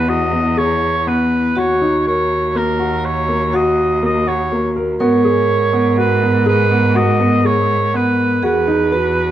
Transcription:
Already playing: E2 E4 B4
0.08 F#4 D#5
0.32 B3
0.57 G#4 C#5
1.07 B3 B4
1.56 D#2 F#4 C#5
1.82 D#4
2.07 A#4 C#5
2.55 A#3 A#4
2.80 F#4
3.05 C#5
3.28 A#3
3.53 F#4 D#5
4.02 A#3 D#5
4.27 F#4 C#5
4.52 A#3
4.76 A#4
4.99 G#2 B3 A#4 C#5
5.25 G#4
5.73 B3
5.97 F#4 B4
6.22 B3
6.46 G#4 B4
6.71 B3
6.95 F#4 D#5
7.20 B3
7.45 G#4 C#5
7.94 B3 B4
8.43 E2 F#4 G#4 B4
8.67 D#4
8.92 F#4 B4

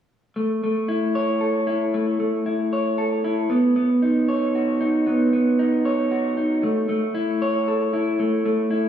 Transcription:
0.36 A3
0.64 A3
0.88 E4
1.15 C#5
1.41 A4
1.67 E4
1.94 A3
2.20 A3
2.46 E4
2.73 C#5
2.98 A4
3.24 E4
3.50 B3
3.76 B3
4.02 D#4
4.28 C#5
4.55 F#4
4.81 D#4
5.07 B3
5.33 B3
5.59 D#4
5.85 C#5
6.11 F#4
6.37 D#4
6.63 A3
6.89 A3
7.15 E4
7.42 C#5
7.68 A4
7.93 E4
8.19 A3
8.45 A3
8.71 E4

